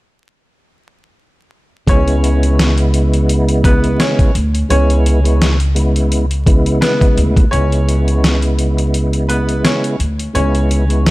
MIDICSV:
0, 0, Header, 1, 5, 480
1, 0, Start_track
1, 0, Key_signature, 4, "minor"
1, 0, Tempo, 705882
1, 1275, Time_signature, 4, 2, 24, 8
1, 7552, End_track
2, 0, Start_track
2, 0, Title_t, "Upright piano"
2, 0, Program_c, 0, 0
2, 1286, Note_on_c, 0, 73, 102
2, 1291, Note_on_c, 0, 61, 77
2, 1866, Note_off_c, 0, 73, 0
2, 1869, Note_off_c, 0, 61, 0
2, 2480, Note_on_c, 0, 71, 86
2, 2485, Note_on_c, 0, 59, 66
2, 2694, Note_off_c, 0, 71, 0
2, 2697, Note_off_c, 0, 59, 0
2, 2719, Note_on_c, 0, 73, 75
2, 2724, Note_on_c, 0, 61, 60
2, 2933, Note_off_c, 0, 73, 0
2, 2936, Note_off_c, 0, 61, 0
2, 3199, Note_on_c, 0, 73, 100
2, 3204, Note_on_c, 0, 61, 74
2, 3782, Note_off_c, 0, 73, 0
2, 3785, Note_off_c, 0, 61, 0
2, 4632, Note_on_c, 0, 71, 80
2, 4638, Note_on_c, 0, 59, 64
2, 4849, Note_off_c, 0, 71, 0
2, 4853, Note_off_c, 0, 59, 0
2, 5107, Note_on_c, 0, 73, 107
2, 5113, Note_on_c, 0, 61, 82
2, 5696, Note_off_c, 0, 73, 0
2, 5699, Note_off_c, 0, 61, 0
2, 6314, Note_on_c, 0, 71, 93
2, 6320, Note_on_c, 0, 59, 64
2, 6531, Note_off_c, 0, 71, 0
2, 6534, Note_off_c, 0, 59, 0
2, 6557, Note_on_c, 0, 73, 74
2, 6563, Note_on_c, 0, 61, 61
2, 6772, Note_off_c, 0, 73, 0
2, 6775, Note_off_c, 0, 61, 0
2, 7037, Note_on_c, 0, 73, 92
2, 7043, Note_on_c, 0, 61, 74
2, 7552, Note_off_c, 0, 61, 0
2, 7552, Note_off_c, 0, 73, 0
2, 7552, End_track
3, 0, Start_track
3, 0, Title_t, "Tonewheel organ"
3, 0, Program_c, 1, 16
3, 1268, Note_on_c, 1, 49, 82
3, 1272, Note_on_c, 1, 56, 84
3, 1276, Note_on_c, 1, 59, 81
3, 1280, Note_on_c, 1, 64, 97
3, 2930, Note_off_c, 1, 49, 0
3, 2932, Note_off_c, 1, 56, 0
3, 2934, Note_off_c, 1, 59, 0
3, 2936, Note_off_c, 1, 64, 0
3, 3187, Note_on_c, 1, 49, 96
3, 3191, Note_on_c, 1, 56, 83
3, 3195, Note_on_c, 1, 59, 85
3, 3200, Note_on_c, 1, 64, 101
3, 3532, Note_off_c, 1, 49, 0
3, 3534, Note_off_c, 1, 56, 0
3, 3536, Note_off_c, 1, 59, 0
3, 3538, Note_off_c, 1, 64, 0
3, 3557, Note_on_c, 1, 49, 86
3, 3561, Note_on_c, 1, 56, 76
3, 3565, Note_on_c, 1, 59, 82
3, 3569, Note_on_c, 1, 64, 95
3, 3781, Note_off_c, 1, 49, 0
3, 3783, Note_off_c, 1, 56, 0
3, 3785, Note_off_c, 1, 59, 0
3, 3787, Note_off_c, 1, 64, 0
3, 3906, Note_on_c, 1, 49, 90
3, 3910, Note_on_c, 1, 56, 76
3, 3914, Note_on_c, 1, 59, 79
3, 3918, Note_on_c, 1, 64, 98
3, 4251, Note_off_c, 1, 49, 0
3, 4253, Note_off_c, 1, 56, 0
3, 4255, Note_off_c, 1, 59, 0
3, 4257, Note_off_c, 1, 64, 0
3, 4393, Note_on_c, 1, 49, 97
3, 4397, Note_on_c, 1, 56, 79
3, 4401, Note_on_c, 1, 59, 81
3, 4405, Note_on_c, 1, 64, 104
3, 5062, Note_off_c, 1, 49, 0
3, 5064, Note_off_c, 1, 56, 0
3, 5067, Note_off_c, 1, 59, 0
3, 5069, Note_off_c, 1, 64, 0
3, 5108, Note_on_c, 1, 49, 86
3, 5112, Note_on_c, 1, 56, 87
3, 5116, Note_on_c, 1, 59, 81
3, 5120, Note_on_c, 1, 64, 100
3, 6770, Note_off_c, 1, 49, 0
3, 6772, Note_off_c, 1, 56, 0
3, 6774, Note_off_c, 1, 59, 0
3, 6776, Note_off_c, 1, 64, 0
3, 7026, Note_on_c, 1, 49, 95
3, 7031, Note_on_c, 1, 56, 82
3, 7035, Note_on_c, 1, 59, 88
3, 7039, Note_on_c, 1, 64, 100
3, 7371, Note_off_c, 1, 49, 0
3, 7374, Note_off_c, 1, 56, 0
3, 7376, Note_off_c, 1, 59, 0
3, 7378, Note_off_c, 1, 64, 0
3, 7397, Note_on_c, 1, 49, 91
3, 7402, Note_on_c, 1, 56, 81
3, 7406, Note_on_c, 1, 59, 80
3, 7410, Note_on_c, 1, 64, 99
3, 7552, Note_off_c, 1, 49, 0
3, 7552, Note_off_c, 1, 56, 0
3, 7552, Note_off_c, 1, 59, 0
3, 7552, Note_off_c, 1, 64, 0
3, 7552, End_track
4, 0, Start_track
4, 0, Title_t, "Upright bass"
4, 0, Program_c, 2, 32
4, 1275, Note_on_c, 2, 37, 100
4, 2688, Note_off_c, 2, 37, 0
4, 2956, Note_on_c, 2, 38, 88
4, 3136, Note_off_c, 2, 38, 0
4, 3197, Note_on_c, 2, 37, 100
4, 4609, Note_off_c, 2, 37, 0
4, 4876, Note_on_c, 2, 38, 86
4, 5056, Note_off_c, 2, 38, 0
4, 5116, Note_on_c, 2, 37, 106
4, 6528, Note_off_c, 2, 37, 0
4, 6796, Note_on_c, 2, 38, 83
4, 6976, Note_off_c, 2, 38, 0
4, 7036, Note_on_c, 2, 37, 104
4, 7552, Note_off_c, 2, 37, 0
4, 7552, End_track
5, 0, Start_track
5, 0, Title_t, "Drums"
5, 1274, Note_on_c, 9, 36, 112
5, 1279, Note_on_c, 9, 42, 84
5, 1342, Note_off_c, 9, 36, 0
5, 1347, Note_off_c, 9, 42, 0
5, 1411, Note_on_c, 9, 42, 45
5, 1479, Note_off_c, 9, 42, 0
5, 1522, Note_on_c, 9, 42, 73
5, 1590, Note_off_c, 9, 42, 0
5, 1653, Note_on_c, 9, 42, 49
5, 1721, Note_off_c, 9, 42, 0
5, 1763, Note_on_c, 9, 42, 84
5, 1764, Note_on_c, 9, 38, 110
5, 1831, Note_off_c, 9, 42, 0
5, 1832, Note_off_c, 9, 38, 0
5, 1888, Note_on_c, 9, 42, 50
5, 1956, Note_off_c, 9, 42, 0
5, 1998, Note_on_c, 9, 42, 65
5, 2066, Note_off_c, 9, 42, 0
5, 2132, Note_on_c, 9, 42, 53
5, 2200, Note_off_c, 9, 42, 0
5, 2240, Note_on_c, 9, 42, 80
5, 2308, Note_off_c, 9, 42, 0
5, 2370, Note_on_c, 9, 42, 51
5, 2438, Note_off_c, 9, 42, 0
5, 2476, Note_on_c, 9, 36, 91
5, 2480, Note_on_c, 9, 42, 87
5, 2544, Note_off_c, 9, 36, 0
5, 2548, Note_off_c, 9, 42, 0
5, 2609, Note_on_c, 9, 42, 45
5, 2677, Note_off_c, 9, 42, 0
5, 2718, Note_on_c, 9, 38, 120
5, 2719, Note_on_c, 9, 42, 92
5, 2786, Note_off_c, 9, 38, 0
5, 2787, Note_off_c, 9, 42, 0
5, 2849, Note_on_c, 9, 36, 83
5, 2850, Note_on_c, 9, 42, 50
5, 2917, Note_off_c, 9, 36, 0
5, 2918, Note_off_c, 9, 42, 0
5, 2959, Note_on_c, 9, 42, 76
5, 3027, Note_off_c, 9, 42, 0
5, 3091, Note_on_c, 9, 42, 53
5, 3159, Note_off_c, 9, 42, 0
5, 3199, Note_on_c, 9, 42, 82
5, 3267, Note_off_c, 9, 42, 0
5, 3332, Note_on_c, 9, 42, 45
5, 3400, Note_off_c, 9, 42, 0
5, 3442, Note_on_c, 9, 42, 74
5, 3510, Note_off_c, 9, 42, 0
5, 3573, Note_on_c, 9, 42, 49
5, 3641, Note_off_c, 9, 42, 0
5, 3683, Note_on_c, 9, 42, 87
5, 3684, Note_on_c, 9, 38, 111
5, 3751, Note_off_c, 9, 42, 0
5, 3752, Note_off_c, 9, 38, 0
5, 3807, Note_on_c, 9, 42, 50
5, 3875, Note_off_c, 9, 42, 0
5, 3917, Note_on_c, 9, 42, 71
5, 3985, Note_off_c, 9, 42, 0
5, 4052, Note_on_c, 9, 42, 56
5, 4120, Note_off_c, 9, 42, 0
5, 4160, Note_on_c, 9, 42, 80
5, 4228, Note_off_c, 9, 42, 0
5, 4290, Note_on_c, 9, 42, 52
5, 4358, Note_off_c, 9, 42, 0
5, 4396, Note_on_c, 9, 36, 93
5, 4400, Note_on_c, 9, 42, 86
5, 4464, Note_off_c, 9, 36, 0
5, 4468, Note_off_c, 9, 42, 0
5, 4530, Note_on_c, 9, 42, 45
5, 4598, Note_off_c, 9, 42, 0
5, 4638, Note_on_c, 9, 38, 119
5, 4639, Note_on_c, 9, 42, 90
5, 4706, Note_off_c, 9, 38, 0
5, 4707, Note_off_c, 9, 42, 0
5, 4769, Note_on_c, 9, 36, 85
5, 4771, Note_on_c, 9, 42, 50
5, 4837, Note_off_c, 9, 36, 0
5, 4839, Note_off_c, 9, 42, 0
5, 4879, Note_on_c, 9, 42, 75
5, 4947, Note_off_c, 9, 42, 0
5, 5008, Note_on_c, 9, 36, 90
5, 5011, Note_on_c, 9, 42, 52
5, 5076, Note_off_c, 9, 36, 0
5, 5079, Note_off_c, 9, 42, 0
5, 5119, Note_on_c, 9, 42, 87
5, 5187, Note_off_c, 9, 42, 0
5, 5252, Note_on_c, 9, 42, 48
5, 5320, Note_off_c, 9, 42, 0
5, 5362, Note_on_c, 9, 42, 75
5, 5430, Note_off_c, 9, 42, 0
5, 5493, Note_on_c, 9, 42, 50
5, 5561, Note_off_c, 9, 42, 0
5, 5604, Note_on_c, 9, 38, 110
5, 5604, Note_on_c, 9, 42, 91
5, 5672, Note_off_c, 9, 38, 0
5, 5672, Note_off_c, 9, 42, 0
5, 5728, Note_on_c, 9, 42, 52
5, 5796, Note_off_c, 9, 42, 0
5, 5839, Note_on_c, 9, 42, 70
5, 5907, Note_off_c, 9, 42, 0
5, 5973, Note_on_c, 9, 42, 53
5, 6041, Note_off_c, 9, 42, 0
5, 6080, Note_on_c, 9, 42, 82
5, 6148, Note_off_c, 9, 42, 0
5, 6210, Note_on_c, 9, 42, 51
5, 6278, Note_off_c, 9, 42, 0
5, 6321, Note_on_c, 9, 42, 88
5, 6389, Note_off_c, 9, 42, 0
5, 6451, Note_on_c, 9, 42, 47
5, 6519, Note_off_c, 9, 42, 0
5, 6559, Note_on_c, 9, 38, 123
5, 6560, Note_on_c, 9, 42, 93
5, 6627, Note_off_c, 9, 38, 0
5, 6628, Note_off_c, 9, 42, 0
5, 6692, Note_on_c, 9, 42, 51
5, 6760, Note_off_c, 9, 42, 0
5, 6800, Note_on_c, 9, 42, 76
5, 6868, Note_off_c, 9, 42, 0
5, 6933, Note_on_c, 9, 42, 54
5, 7001, Note_off_c, 9, 42, 0
5, 7040, Note_on_c, 9, 42, 86
5, 7108, Note_off_c, 9, 42, 0
5, 7172, Note_on_c, 9, 42, 46
5, 7240, Note_off_c, 9, 42, 0
5, 7282, Note_on_c, 9, 42, 76
5, 7350, Note_off_c, 9, 42, 0
5, 7413, Note_on_c, 9, 42, 51
5, 7481, Note_off_c, 9, 42, 0
5, 7523, Note_on_c, 9, 42, 90
5, 7524, Note_on_c, 9, 38, 113
5, 7552, Note_off_c, 9, 38, 0
5, 7552, Note_off_c, 9, 42, 0
5, 7552, End_track
0, 0, End_of_file